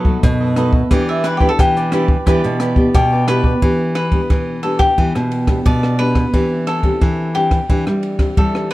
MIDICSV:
0, 0, Header, 1, 6, 480
1, 0, Start_track
1, 0, Key_signature, 1, "minor"
1, 0, Tempo, 678733
1, 644, Time_signature, 4, 2, 24, 8
1, 6179, End_track
2, 0, Start_track
2, 0, Title_t, "Cavaquinho"
2, 0, Program_c, 0, 24
2, 0, Note_on_c, 0, 63, 50
2, 0, Note_on_c, 0, 69, 58
2, 0, Note_on_c, 0, 71, 56
2, 0, Note_on_c, 0, 75, 60
2, 271, Note_off_c, 0, 63, 0
2, 272, Note_off_c, 0, 69, 0
2, 275, Note_off_c, 0, 71, 0
2, 276, Note_off_c, 0, 75, 0
2, 285, Note_on_c, 0, 75, 48
2, 293, Note_on_c, 0, 71, 47
2, 299, Note_on_c, 0, 69, 48
2, 393, Note_off_c, 0, 69, 0
2, 395, Note_off_c, 0, 75, 0
2, 396, Note_on_c, 0, 63, 70
2, 397, Note_off_c, 0, 71, 0
2, 401, Note_on_c, 0, 69, 69
2, 406, Note_on_c, 0, 71, 78
2, 409, Note_on_c, 0, 75, 83
2, 504, Note_off_c, 0, 75, 0
2, 510, Note_off_c, 0, 63, 0
2, 511, Note_off_c, 0, 71, 0
2, 513, Note_off_c, 0, 69, 0
2, 513, Note_on_c, 0, 75, 42
2, 519, Note_on_c, 0, 71, 42
2, 526, Note_on_c, 0, 69, 40
2, 629, Note_off_c, 0, 75, 0
2, 632, Note_off_c, 0, 71, 0
2, 635, Note_off_c, 0, 69, 0
2, 642, Note_on_c, 0, 64, 63
2, 647, Note_on_c, 0, 67, 68
2, 651, Note_on_c, 0, 71, 67
2, 653, Note_on_c, 0, 74, 70
2, 867, Note_off_c, 0, 64, 0
2, 875, Note_off_c, 0, 67, 0
2, 876, Note_on_c, 0, 64, 54
2, 878, Note_off_c, 0, 71, 0
2, 878, Note_off_c, 0, 74, 0
2, 883, Note_on_c, 0, 67, 50
2, 886, Note_on_c, 0, 71, 55
2, 889, Note_on_c, 0, 74, 58
2, 983, Note_off_c, 0, 64, 0
2, 986, Note_off_c, 0, 67, 0
2, 987, Note_off_c, 0, 71, 0
2, 990, Note_off_c, 0, 74, 0
2, 991, Note_on_c, 0, 64, 77
2, 994, Note_on_c, 0, 67, 76
2, 996, Note_on_c, 0, 71, 91
2, 999, Note_on_c, 0, 74, 79
2, 1061, Note_off_c, 0, 64, 0
2, 1063, Note_off_c, 0, 67, 0
2, 1064, Note_off_c, 0, 71, 0
2, 1065, Note_off_c, 0, 74, 0
2, 1248, Note_on_c, 0, 74, 58
2, 1255, Note_on_c, 0, 71, 54
2, 1260, Note_on_c, 0, 67, 50
2, 1352, Note_off_c, 0, 67, 0
2, 1354, Note_on_c, 0, 64, 79
2, 1355, Note_off_c, 0, 74, 0
2, 1356, Note_off_c, 0, 71, 0
2, 1360, Note_on_c, 0, 67, 93
2, 1365, Note_on_c, 0, 71, 86
2, 1367, Note_on_c, 0, 74, 97
2, 1461, Note_off_c, 0, 74, 0
2, 1468, Note_off_c, 0, 71, 0
2, 1469, Note_off_c, 0, 64, 0
2, 1470, Note_on_c, 0, 74, 47
2, 1472, Note_off_c, 0, 67, 0
2, 1476, Note_on_c, 0, 71, 46
2, 1586, Note_off_c, 0, 74, 0
2, 1590, Note_off_c, 0, 71, 0
2, 1599, Note_on_c, 0, 64, 73
2, 1602, Note_on_c, 0, 67, 90
2, 1607, Note_on_c, 0, 71, 76
2, 1610, Note_on_c, 0, 74, 91
2, 1827, Note_off_c, 0, 64, 0
2, 1832, Note_off_c, 0, 67, 0
2, 1835, Note_off_c, 0, 71, 0
2, 1836, Note_off_c, 0, 74, 0
2, 1836, Note_on_c, 0, 64, 59
2, 1841, Note_on_c, 0, 67, 66
2, 1845, Note_on_c, 0, 71, 57
2, 1848, Note_on_c, 0, 74, 59
2, 2189, Note_off_c, 0, 64, 0
2, 2192, Note_off_c, 0, 67, 0
2, 2194, Note_off_c, 0, 71, 0
2, 2195, Note_off_c, 0, 74, 0
2, 2207, Note_on_c, 0, 74, 51
2, 2213, Note_on_c, 0, 71, 44
2, 2218, Note_on_c, 0, 67, 45
2, 2314, Note_off_c, 0, 67, 0
2, 2315, Note_off_c, 0, 74, 0
2, 2317, Note_off_c, 0, 71, 0
2, 2318, Note_on_c, 0, 64, 73
2, 2322, Note_on_c, 0, 67, 69
2, 2328, Note_on_c, 0, 71, 81
2, 2329, Note_on_c, 0, 74, 83
2, 2424, Note_off_c, 0, 74, 0
2, 2430, Note_off_c, 0, 64, 0
2, 2432, Note_off_c, 0, 67, 0
2, 2433, Note_off_c, 0, 71, 0
2, 2433, Note_on_c, 0, 74, 48
2, 2442, Note_on_c, 0, 71, 51
2, 2446, Note_on_c, 0, 67, 38
2, 2547, Note_off_c, 0, 74, 0
2, 2552, Note_off_c, 0, 71, 0
2, 2554, Note_off_c, 0, 67, 0
2, 6179, End_track
3, 0, Start_track
3, 0, Title_t, "Cavaquinho"
3, 0, Program_c, 1, 24
3, 770, Note_on_c, 1, 76, 82
3, 878, Note_on_c, 1, 71, 80
3, 883, Note_off_c, 1, 76, 0
3, 958, Note_off_c, 1, 71, 0
3, 970, Note_on_c, 1, 67, 65
3, 1044, Note_off_c, 1, 67, 0
3, 1052, Note_on_c, 1, 69, 94
3, 1125, Note_off_c, 1, 69, 0
3, 1129, Note_on_c, 1, 67, 78
3, 2075, Note_off_c, 1, 67, 0
3, 2084, Note_on_c, 1, 67, 88
3, 2306, Note_off_c, 1, 67, 0
3, 2319, Note_on_c, 1, 71, 102
3, 2772, Note_off_c, 1, 71, 0
3, 2794, Note_on_c, 1, 71, 88
3, 3249, Note_off_c, 1, 71, 0
3, 3274, Note_on_c, 1, 69, 84
3, 3388, Note_on_c, 1, 67, 85
3, 3389, Note_off_c, 1, 69, 0
3, 3999, Note_on_c, 1, 74, 84
3, 4012, Note_off_c, 1, 67, 0
3, 4234, Note_on_c, 1, 71, 88
3, 4247, Note_off_c, 1, 74, 0
3, 4689, Note_off_c, 1, 71, 0
3, 4717, Note_on_c, 1, 69, 84
3, 5196, Note_on_c, 1, 67, 78
3, 5214, Note_off_c, 1, 69, 0
3, 5924, Note_on_c, 1, 69, 79
3, 5941, Note_off_c, 1, 67, 0
3, 6154, Note_off_c, 1, 69, 0
3, 6157, Note_on_c, 1, 71, 92
3, 6179, Note_off_c, 1, 71, 0
3, 6179, End_track
4, 0, Start_track
4, 0, Title_t, "Nylon-string guitar"
4, 0, Program_c, 2, 24
4, 0, Note_on_c, 2, 47, 61
4, 37, Note_on_c, 2, 54, 74
4, 40, Note_on_c, 2, 57, 69
4, 43, Note_on_c, 2, 63, 75
4, 142, Note_off_c, 2, 47, 0
4, 171, Note_on_c, 2, 42, 68
4, 362, Note_off_c, 2, 54, 0
4, 364, Note_off_c, 2, 57, 0
4, 365, Note_off_c, 2, 63, 0
4, 404, Note_on_c, 2, 54, 60
4, 408, Note_on_c, 2, 57, 61
4, 411, Note_on_c, 2, 63, 66
4, 545, Note_off_c, 2, 54, 0
4, 547, Note_off_c, 2, 57, 0
4, 549, Note_off_c, 2, 63, 0
4, 623, Note_off_c, 2, 42, 0
4, 651, Note_on_c, 2, 52, 61
4, 651, Note_on_c, 2, 59, 72
4, 655, Note_on_c, 2, 62, 66
4, 656, Note_on_c, 2, 67, 67
4, 969, Note_off_c, 2, 59, 0
4, 970, Note_off_c, 2, 62, 0
4, 971, Note_off_c, 2, 67, 0
4, 996, Note_on_c, 2, 59, 65
4, 999, Note_on_c, 2, 62, 75
4, 1003, Note_on_c, 2, 67, 74
4, 1103, Note_off_c, 2, 52, 0
4, 1127, Note_on_c, 2, 47, 61
4, 1321, Note_off_c, 2, 59, 0
4, 1322, Note_off_c, 2, 62, 0
4, 1324, Note_off_c, 2, 67, 0
4, 1362, Note_on_c, 2, 59, 55
4, 1366, Note_on_c, 2, 62, 64
4, 1366, Note_on_c, 2, 67, 62
4, 1504, Note_off_c, 2, 59, 0
4, 1505, Note_off_c, 2, 62, 0
4, 1505, Note_off_c, 2, 67, 0
4, 1581, Note_off_c, 2, 47, 0
4, 1603, Note_on_c, 2, 52, 59
4, 1607, Note_on_c, 2, 59, 67
4, 1611, Note_on_c, 2, 62, 60
4, 1612, Note_on_c, 2, 67, 65
4, 1829, Note_off_c, 2, 59, 0
4, 1830, Note_off_c, 2, 62, 0
4, 1832, Note_off_c, 2, 67, 0
4, 1954, Note_on_c, 2, 59, 69
4, 1959, Note_on_c, 2, 62, 70
4, 1961, Note_on_c, 2, 67, 74
4, 2059, Note_off_c, 2, 52, 0
4, 2082, Note_on_c, 2, 47, 62
4, 2280, Note_off_c, 2, 59, 0
4, 2281, Note_off_c, 2, 62, 0
4, 2283, Note_off_c, 2, 67, 0
4, 2318, Note_on_c, 2, 59, 63
4, 2322, Note_on_c, 2, 62, 66
4, 2325, Note_on_c, 2, 67, 68
4, 2522, Note_off_c, 2, 59, 0
4, 2523, Note_off_c, 2, 62, 0
4, 2524, Note_off_c, 2, 67, 0
4, 2538, Note_off_c, 2, 47, 0
4, 2563, Note_on_c, 2, 52, 57
4, 2565, Note_on_c, 2, 59, 48
4, 2566, Note_on_c, 2, 62, 54
4, 2571, Note_on_c, 2, 67, 62
4, 2884, Note_off_c, 2, 59, 0
4, 2886, Note_off_c, 2, 62, 0
4, 2887, Note_off_c, 2, 67, 0
4, 2915, Note_on_c, 2, 59, 63
4, 2919, Note_on_c, 2, 62, 60
4, 2920, Note_on_c, 2, 67, 58
4, 3018, Note_off_c, 2, 52, 0
4, 3043, Note_on_c, 2, 47, 52
4, 3240, Note_off_c, 2, 59, 0
4, 3241, Note_off_c, 2, 62, 0
4, 3242, Note_off_c, 2, 67, 0
4, 3280, Note_on_c, 2, 59, 53
4, 3283, Note_on_c, 2, 62, 48
4, 3285, Note_on_c, 2, 67, 55
4, 3482, Note_off_c, 2, 59, 0
4, 3484, Note_off_c, 2, 62, 0
4, 3484, Note_off_c, 2, 67, 0
4, 3498, Note_off_c, 2, 47, 0
4, 3521, Note_on_c, 2, 52, 54
4, 3525, Note_on_c, 2, 59, 51
4, 3528, Note_on_c, 2, 67, 54
4, 3529, Note_on_c, 2, 62, 55
4, 3747, Note_off_c, 2, 59, 0
4, 3748, Note_off_c, 2, 62, 0
4, 3750, Note_off_c, 2, 67, 0
4, 3873, Note_on_c, 2, 59, 55
4, 3876, Note_on_c, 2, 62, 68
4, 3879, Note_on_c, 2, 67, 69
4, 3978, Note_off_c, 2, 52, 0
4, 4002, Note_on_c, 2, 47, 58
4, 4198, Note_off_c, 2, 59, 0
4, 4200, Note_off_c, 2, 62, 0
4, 4202, Note_off_c, 2, 67, 0
4, 4239, Note_on_c, 2, 59, 58
4, 4242, Note_on_c, 2, 62, 57
4, 4246, Note_on_c, 2, 67, 57
4, 4442, Note_off_c, 2, 59, 0
4, 4443, Note_off_c, 2, 62, 0
4, 4444, Note_off_c, 2, 67, 0
4, 4458, Note_off_c, 2, 47, 0
4, 4485, Note_on_c, 2, 52, 55
4, 4485, Note_on_c, 2, 60, 54
4, 4488, Note_on_c, 2, 67, 57
4, 4489, Note_on_c, 2, 62, 54
4, 4805, Note_off_c, 2, 60, 0
4, 4806, Note_off_c, 2, 62, 0
4, 4806, Note_off_c, 2, 67, 0
4, 4835, Note_on_c, 2, 60, 61
4, 4840, Note_on_c, 2, 62, 59
4, 4842, Note_on_c, 2, 67, 67
4, 4940, Note_off_c, 2, 52, 0
4, 4968, Note_on_c, 2, 52, 54
4, 5160, Note_off_c, 2, 60, 0
4, 5162, Note_off_c, 2, 62, 0
4, 5163, Note_off_c, 2, 67, 0
4, 5201, Note_on_c, 2, 60, 53
4, 5205, Note_on_c, 2, 62, 51
4, 5209, Note_on_c, 2, 67, 65
4, 5403, Note_off_c, 2, 60, 0
4, 5405, Note_off_c, 2, 62, 0
4, 5407, Note_off_c, 2, 67, 0
4, 5421, Note_off_c, 2, 52, 0
4, 5442, Note_on_c, 2, 52, 56
4, 5445, Note_on_c, 2, 60, 51
4, 5446, Note_on_c, 2, 62, 54
4, 5449, Note_on_c, 2, 67, 54
4, 5764, Note_off_c, 2, 60, 0
4, 5766, Note_off_c, 2, 62, 0
4, 5766, Note_off_c, 2, 67, 0
4, 5791, Note_on_c, 2, 60, 57
4, 5795, Note_on_c, 2, 62, 66
4, 5796, Note_on_c, 2, 67, 69
4, 5898, Note_off_c, 2, 52, 0
4, 5924, Note_on_c, 2, 52, 59
4, 6119, Note_off_c, 2, 60, 0
4, 6119, Note_off_c, 2, 62, 0
4, 6121, Note_off_c, 2, 67, 0
4, 6179, Note_off_c, 2, 52, 0
4, 6179, End_track
5, 0, Start_track
5, 0, Title_t, "Nylon-string guitar"
5, 0, Program_c, 3, 24
5, 0, Note_on_c, 3, 54, 72
5, 114, Note_off_c, 3, 54, 0
5, 166, Note_on_c, 3, 47, 114
5, 573, Note_off_c, 3, 47, 0
5, 1125, Note_on_c, 3, 52, 94
5, 1532, Note_off_c, 3, 52, 0
5, 1729, Note_on_c, 3, 47, 80
5, 2032, Note_off_c, 3, 47, 0
5, 3041, Note_on_c, 3, 52, 73
5, 3449, Note_off_c, 3, 52, 0
5, 3646, Note_on_c, 3, 47, 68
5, 3950, Note_off_c, 3, 47, 0
5, 5565, Note_on_c, 3, 55, 68
5, 5870, Note_off_c, 3, 55, 0
5, 5921, Note_on_c, 3, 55, 97
5, 6179, Note_off_c, 3, 55, 0
5, 6179, End_track
6, 0, Start_track
6, 0, Title_t, "Drums"
6, 35, Note_on_c, 9, 36, 76
6, 105, Note_off_c, 9, 36, 0
6, 164, Note_on_c, 9, 37, 62
6, 164, Note_on_c, 9, 42, 67
6, 165, Note_on_c, 9, 36, 88
6, 235, Note_off_c, 9, 37, 0
6, 235, Note_off_c, 9, 42, 0
6, 236, Note_off_c, 9, 36, 0
6, 399, Note_on_c, 9, 37, 76
6, 399, Note_on_c, 9, 42, 52
6, 470, Note_off_c, 9, 37, 0
6, 470, Note_off_c, 9, 42, 0
6, 513, Note_on_c, 9, 36, 75
6, 584, Note_off_c, 9, 36, 0
6, 642, Note_on_c, 9, 37, 70
6, 642, Note_on_c, 9, 42, 70
6, 643, Note_on_c, 9, 36, 71
6, 713, Note_off_c, 9, 37, 0
6, 713, Note_off_c, 9, 42, 0
6, 714, Note_off_c, 9, 36, 0
6, 876, Note_on_c, 9, 37, 75
6, 876, Note_on_c, 9, 42, 54
6, 947, Note_off_c, 9, 37, 0
6, 947, Note_off_c, 9, 42, 0
6, 993, Note_on_c, 9, 36, 65
6, 1064, Note_off_c, 9, 36, 0
6, 1124, Note_on_c, 9, 36, 87
6, 1125, Note_on_c, 9, 37, 63
6, 1125, Note_on_c, 9, 42, 72
6, 1195, Note_off_c, 9, 36, 0
6, 1195, Note_off_c, 9, 37, 0
6, 1195, Note_off_c, 9, 42, 0
6, 1250, Note_on_c, 9, 42, 33
6, 1321, Note_off_c, 9, 42, 0
6, 1358, Note_on_c, 9, 37, 74
6, 1358, Note_on_c, 9, 42, 52
6, 1428, Note_off_c, 9, 37, 0
6, 1428, Note_off_c, 9, 42, 0
6, 1473, Note_on_c, 9, 36, 70
6, 1544, Note_off_c, 9, 36, 0
6, 1604, Note_on_c, 9, 36, 69
6, 1604, Note_on_c, 9, 37, 65
6, 1604, Note_on_c, 9, 42, 74
6, 1674, Note_off_c, 9, 36, 0
6, 1674, Note_off_c, 9, 37, 0
6, 1674, Note_off_c, 9, 42, 0
6, 1726, Note_on_c, 9, 42, 32
6, 1797, Note_off_c, 9, 42, 0
6, 1838, Note_on_c, 9, 37, 79
6, 1838, Note_on_c, 9, 42, 56
6, 1908, Note_off_c, 9, 37, 0
6, 1908, Note_off_c, 9, 42, 0
6, 1953, Note_on_c, 9, 36, 68
6, 2023, Note_off_c, 9, 36, 0
6, 2083, Note_on_c, 9, 36, 90
6, 2083, Note_on_c, 9, 37, 65
6, 2083, Note_on_c, 9, 42, 65
6, 2153, Note_off_c, 9, 37, 0
6, 2153, Note_off_c, 9, 42, 0
6, 2154, Note_off_c, 9, 36, 0
6, 2318, Note_on_c, 9, 37, 74
6, 2318, Note_on_c, 9, 42, 48
6, 2388, Note_off_c, 9, 37, 0
6, 2388, Note_off_c, 9, 42, 0
6, 2431, Note_on_c, 9, 36, 64
6, 2502, Note_off_c, 9, 36, 0
6, 2561, Note_on_c, 9, 51, 41
6, 2562, Note_on_c, 9, 36, 64
6, 2632, Note_off_c, 9, 36, 0
6, 2632, Note_off_c, 9, 51, 0
6, 2796, Note_on_c, 9, 37, 66
6, 2796, Note_on_c, 9, 51, 47
6, 2866, Note_off_c, 9, 37, 0
6, 2866, Note_off_c, 9, 51, 0
6, 2911, Note_on_c, 9, 36, 62
6, 2911, Note_on_c, 9, 51, 45
6, 2982, Note_off_c, 9, 36, 0
6, 2982, Note_off_c, 9, 51, 0
6, 3042, Note_on_c, 9, 36, 75
6, 3043, Note_on_c, 9, 37, 58
6, 3043, Note_on_c, 9, 51, 46
6, 3113, Note_off_c, 9, 36, 0
6, 3114, Note_off_c, 9, 37, 0
6, 3114, Note_off_c, 9, 51, 0
6, 3276, Note_on_c, 9, 51, 45
6, 3346, Note_off_c, 9, 51, 0
6, 3391, Note_on_c, 9, 36, 67
6, 3391, Note_on_c, 9, 37, 60
6, 3391, Note_on_c, 9, 51, 45
6, 3462, Note_off_c, 9, 36, 0
6, 3462, Note_off_c, 9, 37, 0
6, 3462, Note_off_c, 9, 51, 0
6, 3521, Note_on_c, 9, 36, 62
6, 3523, Note_on_c, 9, 51, 42
6, 3592, Note_off_c, 9, 36, 0
6, 3594, Note_off_c, 9, 51, 0
6, 3645, Note_on_c, 9, 37, 63
6, 3716, Note_off_c, 9, 37, 0
6, 3758, Note_on_c, 9, 51, 51
6, 3829, Note_off_c, 9, 51, 0
6, 3871, Note_on_c, 9, 36, 66
6, 3872, Note_on_c, 9, 37, 67
6, 3872, Note_on_c, 9, 51, 53
6, 3941, Note_off_c, 9, 36, 0
6, 3942, Note_off_c, 9, 37, 0
6, 3942, Note_off_c, 9, 51, 0
6, 4001, Note_on_c, 9, 36, 81
6, 4002, Note_on_c, 9, 51, 43
6, 4072, Note_off_c, 9, 36, 0
6, 4072, Note_off_c, 9, 51, 0
6, 4125, Note_on_c, 9, 37, 69
6, 4196, Note_off_c, 9, 37, 0
6, 4238, Note_on_c, 9, 51, 49
6, 4309, Note_off_c, 9, 51, 0
6, 4351, Note_on_c, 9, 36, 59
6, 4352, Note_on_c, 9, 37, 66
6, 4352, Note_on_c, 9, 51, 48
6, 4422, Note_off_c, 9, 36, 0
6, 4422, Note_off_c, 9, 37, 0
6, 4422, Note_off_c, 9, 51, 0
6, 4481, Note_on_c, 9, 36, 61
6, 4483, Note_on_c, 9, 51, 52
6, 4552, Note_off_c, 9, 36, 0
6, 4554, Note_off_c, 9, 51, 0
6, 4718, Note_on_c, 9, 37, 67
6, 4718, Note_on_c, 9, 51, 51
6, 4789, Note_off_c, 9, 37, 0
6, 4789, Note_off_c, 9, 51, 0
6, 4831, Note_on_c, 9, 36, 61
6, 4832, Note_on_c, 9, 51, 43
6, 4902, Note_off_c, 9, 36, 0
6, 4903, Note_off_c, 9, 51, 0
6, 4961, Note_on_c, 9, 36, 79
6, 4963, Note_on_c, 9, 37, 56
6, 4963, Note_on_c, 9, 51, 44
6, 5032, Note_off_c, 9, 36, 0
6, 5033, Note_off_c, 9, 37, 0
6, 5033, Note_off_c, 9, 51, 0
6, 5198, Note_on_c, 9, 51, 45
6, 5269, Note_off_c, 9, 51, 0
6, 5311, Note_on_c, 9, 36, 62
6, 5312, Note_on_c, 9, 37, 59
6, 5312, Note_on_c, 9, 51, 49
6, 5381, Note_off_c, 9, 36, 0
6, 5383, Note_off_c, 9, 37, 0
6, 5383, Note_off_c, 9, 51, 0
6, 5442, Note_on_c, 9, 36, 66
6, 5444, Note_on_c, 9, 51, 46
6, 5512, Note_off_c, 9, 36, 0
6, 5514, Note_off_c, 9, 51, 0
6, 5565, Note_on_c, 9, 37, 62
6, 5635, Note_off_c, 9, 37, 0
6, 5677, Note_on_c, 9, 51, 46
6, 5748, Note_off_c, 9, 51, 0
6, 5791, Note_on_c, 9, 36, 61
6, 5792, Note_on_c, 9, 37, 61
6, 5792, Note_on_c, 9, 51, 49
6, 5862, Note_off_c, 9, 36, 0
6, 5863, Note_off_c, 9, 37, 0
6, 5863, Note_off_c, 9, 51, 0
6, 5920, Note_on_c, 9, 51, 43
6, 5921, Note_on_c, 9, 36, 84
6, 5991, Note_off_c, 9, 51, 0
6, 5992, Note_off_c, 9, 36, 0
6, 6046, Note_on_c, 9, 37, 69
6, 6117, Note_off_c, 9, 37, 0
6, 6157, Note_on_c, 9, 51, 46
6, 6179, Note_off_c, 9, 51, 0
6, 6179, End_track
0, 0, End_of_file